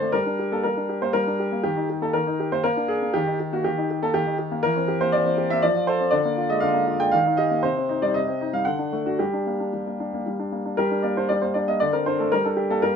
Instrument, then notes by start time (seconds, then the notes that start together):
grand piano
Already playing: D3 C4 D4 C5 D5
0.02 A3
0.12 G3 A#4
0.26 D4
0.39 G4
0.52 A#3 A4
0.63 G3 A#4
0.77 D4
0.89 G4
1.02 A#3 C5
1.13 G3 A#4
1.27 D4
1.40 G4
1.52 A#3
1.63 D#3 G4
1.77 D#4
1.90 G4
2.02 A#3 A4
2.13 D#3 A#4
2.27 D#4
2.40 G4
2.52 A#3 C5
2.64 A#3 A#4
2.77 D4
2.88 G#4
3.02 A#3
3.14 D#3 G4
3.27 D#4
3.40 G4
3.53 A#3 F#4
3.64 D#3 G4
3.78 D#4
3.91 G4
4.03 A#3 A4
4.14 D#3 G4
4.27 D#4
4.39 G4
4.51 A#3
4.63 E3 A#4
4.76 C4
4.88 G4
5.01 A#3 C5
5.12 E3 D5
5.26 C4
5.38 G4
5.50 A#3 E5
5.62 F3 D5
5.76 F4
5.87 A4 C5
6.00 C4
6.11 D3 D5
6.25 A#3
6.37 F4
6.49 G#3 D#5
6.60 D3 F5
6.74 A#3
6.87 F4
7.00 G#3 G5
7.11 D#3 F5
7.26 D#4
7.37 G4 D#5
7.51 A#3
7.63 C3 C5
7.77 C4
7.89 D#4
8.02 G3 D5
8.14 C3 D#5
8.28 C4
8.41 D#4
8.53 G3 F5
8.65 D3 F#5
8.79 D4
8.92 A3
9.06 D4 F#4
9.19 G3 G4
9.33 D4
9.47 A#3
9.60 D4
9.73 G3
9.87 A#3
10.00 D4
10.14 A#3
10.26 G3
10.39 D4
10.52 A#3
10.66 D4
10.77 G3 G4 A#4
10.91 D4
11.02 A#3 D5
11.17 D4 C5
11.29 G3 D5
11.42 A#3 C5
11.54 D4 D5
11.68 A#3 D#5
11.80 D3 D5
11.93 C4 A#4
12.06 D4 C5
12.19 A3 A4
12.32 G3 A#4
12.45 D4 A4
12.57 G4
12.70 A#3 A4
12.82 G3 G4 A#4